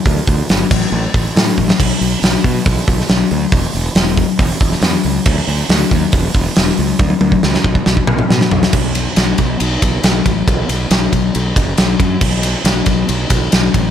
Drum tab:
CC |------x---------|x---------------|----------------|x---------------|
RD |----------------|----------------|----------------|----------------|
HH |o-o-o-----o-o---|--o-o-o-o-o-o-o-|o-o-o-o-o-o-o-o-|--o-o-o-o-o-o-o-|
SD |----o-------o--o|----oo-----oo---|----oo-----oo---|----o-------o---|
T1 |----------------|----------------|----------------|----------------|
T2 |----------------|----------------|----------------|----------------|
FT |----------------|----------------|----------------|----------------|
BD |o-o---o---o---o-|o-----o-o-o-----|o-----o-o-o-----|o-----o-o-o-----|

CC |----------------|x---------------|----------------|x---------------|
RD |----------------|--x-x-x-x-x-x-x-|x-x-x-x-x-x-x-x-|--x-x-x-x-x-x-x-|
HH |----------------|----------------|----------------|----------------|
SD |----oo--o---oo-o|--o-o-------o---|--o-o-------o---|--o-o-------o---|
T1 |ooo-------------|----------------|----------------|----------------|
T2 |----------oo----|----------------|----------------|----------------|
FT |--------------o-|----------------|----------------|----------------|
BD |o--o--oo-o------|o-----o---o---o-|o-----o---o---o-|o-----o---o---o-|